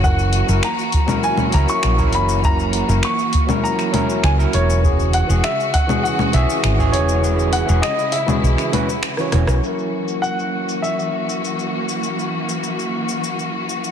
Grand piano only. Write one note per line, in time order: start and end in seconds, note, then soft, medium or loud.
0.04 0.60 F#5 medium
0.64 1.26 A#5 loud
1.24 1.55 G#5 loud
1.54 1.68 A#5 loud
1.70 2.15 C#6 loud
2.15 2.45 B5 loud
2.45 3.00 A#5 loud
3.05 3.66 C#6 loud
3.64 4.25 A#5 medium
4.24 4.31 G#5 loud
4.54 5.16 C#5 medium
5.14 5.45 F#5 medium
5.44 5.75 E5 medium
5.74 6.02 F#5 loud
6.04 6.35 F#5 medium
6.34 6.96 E5 medium
6.92 7.55 C#5 medium
7.53 7.84 F#5 medium
7.82 8.14 D#5 medium
8.12 8.99 E5 medium
10.22 10.79 F#5 medium
10.82 11.69 E5 medium